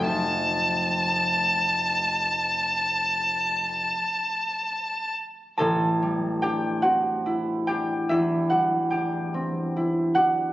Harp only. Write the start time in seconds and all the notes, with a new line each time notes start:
0.00 F1 F2 A3 F4 A4 E5
5.58 A1 A4 A5
6.02 G3
6.42 D4 G4 G5
6.82 C4 F#4 F#5
7.26 E4
7.67 D4 G4 G5
8.09 E2 E4 E5
8.50 G3 F#4 F#5
8.90 D4 G4 G5
9.34 C4
9.76 E4
10.15 D4 F#4 F#5